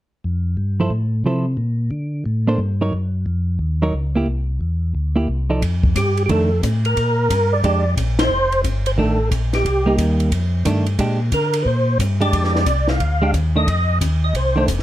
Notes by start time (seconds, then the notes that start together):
0.24 F2
0.57 G2
0.80 F3 E4 A4 C5
0.90 A2
1.24 C3 F3 E4 A4 C5
1.57 A#2
1.91 D3
2.26 A2
2.47 A#3 D4 A4 C5
2.58 G2
2.81 F#3 D#4 A#4 C#5
2.93 F#2
3.26 F2
3.59 D#2
3.82 F#3 D#4 A#4 C#5
3.93 C#2
4.15 A#3 E4 G4
4.26 C2
4.61 E2
4.95 D2
5.16 A#3 E4 G4
5.28 C2
5.50 F3 D#4 A4 D5
5.62 F2, kick, ride
5.83 kick
5.95 G2 G4, kick, hi-hat pedal, ride
6.17 ride
6.26 F2 D#3 G4, kick, ride
6.30 A3 D4 A4
6.63 A2, kick, hi-hat pedal, ride
6.85 A#4, ride
6.96 A#2, kick, ride
7.30 G2, kick, hi-hat pedal, ride
7.53 D5
7.63 F2 G#3 D4 G4, kick, ride
7.97 A#1, kick, hi-hat pedal, ride
8.19 C5, snare, ride
8.30 F1
8.52 ride
8.64 G1, kick, hi-hat pedal, ride
8.86 C5, ride
8.98 A1 D#3 A3 D4 A4, kick
9.31 A#1, kick, hi-hat pedal, ride
9.53 G4, snare, ride
9.65 C2, kick, ride
9.86 G3 A#3 D#4
9.98 D#2, kick, hi-hat pedal, ride
10.20 ride
10.31 F2, kick, ride
10.65 G2 D#3 A3 D4, kick, hi-hat pedal, ride
10.86 ride
10.99 A#2 G#3 D4 G4, kick, ride
11.32 D3 A#4, kick, hi-hat pedal, ride
11.53 ride
11.62 A#2 B4, kick
11.67 C5
11.99 G2, kick, hi-hat pedal, ride
12.21 G#3 D4 G4 D5, ride
12.33 F2, kick, ride
12.44 snare
12.55 snare
12.66 C2, kick, hi-hat pedal, ride
12.88 F5, snare
13.00 D2, kick, ride
13.22 G#3 D4 G4
13.34 D#2, kick, hi-hat pedal, ride
13.56 D#3 A3 D4 D#5
13.67 F2, kick, ride
14.01 D#2, kick, hi-hat pedal, ride
14.24 D#5
14.34 C2 C5, kick, ride
14.56 D#3 A3 D4
14.68 F1, kick, hi-hat pedal, ride
14.79 snare